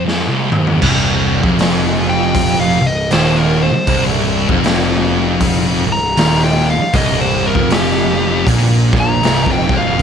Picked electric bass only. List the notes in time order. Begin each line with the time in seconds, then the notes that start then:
0.82 C1
1.43 F1
2.81 C1
3.12 D#1
3.73 muted picked electric bass stroke
3.88 C1
4.49 F1
5.87 C1
6.17 D#1
6.79 muted picked electric bass stroke
6.94 C1
7.55 F1
8.47 A#1
8.93 A#1
9.23 C1
9.46 F1
9.69 C1
9.85 F1